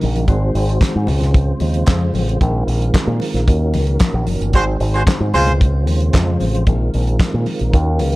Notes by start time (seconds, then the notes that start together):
Already playing: C#3 F#3 A#3 D#4 A#4
0.01 A#1, open hi-hat, high conga
0.16 closed hi-hat
0.28 G#1 D#3 G#3 C4 F#4 C5, kick, closed hi-hat, muted conga
0.55 G#1, open hi-hat
0.69 closed hi-hat
0.81 kick, snare, clap, closed hi-hat, high conga
0.96 G#2
1.07 C#2 C#3 G#3 F4, open hi-hat, muted conga, low conga
1.20 snare, closed hi-hat, low conga
1.34 kick, closed hi-hat, muted conga
1.60 D#2, open hi-hat, muted conga
1.74 closed hi-hat
1.86 F2, kick, snare, clap, closed hi-hat, high conga
2.14 A1, open hi-hat, high conga
2.29 closed hi-hat
2.41 A#1 D#3 C4 A#4, kick, closed hi-hat, muted conga
2.67 A#1, open hi-hat
2.82 closed hi-hat
2.94 kick, snare, clap, closed hi-hat, high conga
3.07 A#2
3.20 open hi-hat, muted conga
3.34 A#1, snare, closed hi-hat
3.48 D#2 A#3 C#4 F#4, kick, closed hi-hat
3.74 C#2, open hi-hat, muted conga
3.87 closed hi-hat
4.00 kick, snare, clap, closed hi-hat, high conga
4.14 A#1
4.27 F#1, open hi-hat, high conga
4.41 G1, closed hi-hat
4.53 G#1 G#3 C4 F#4 C5, kick, closed hi-hat, muted conga
4.80 G#1, open hi-hat
4.94 G#3 F#4 C5, closed hi-hat
5.07 muted fingered electric bass stroke, kick, snare, clap, closed hi-hat, high conga
5.20 G#2
5.34 C#2 C#3 G#3 F4 C5, open hi-hat, muted conga, low conga
5.46 closed hi-hat, low conga
5.61 kick, closed hi-hat
5.87 D#2, open hi-hat, muted conga
6.00 closed hi-hat
6.13 F2, kick, snare, clap, closed hi-hat, high conga
6.40 A1, open hi-hat, high conga
6.55 closed hi-hat
6.67 A#1 D#3 G#3 C4 A#4, kick, closed hi-hat, muted conga
6.94 A#1, open hi-hat
7.07 closed hi-hat
7.19 kick, snare, clap, closed hi-hat, high conga
7.34 A#2
7.46 open hi-hat, muted conga
7.59 A#1, closed hi-hat
7.73 D#2 A#3 C#4 F#4, kick, closed hi-hat
7.99 C#2, open hi-hat, muted conga
8.12 closed hi-hat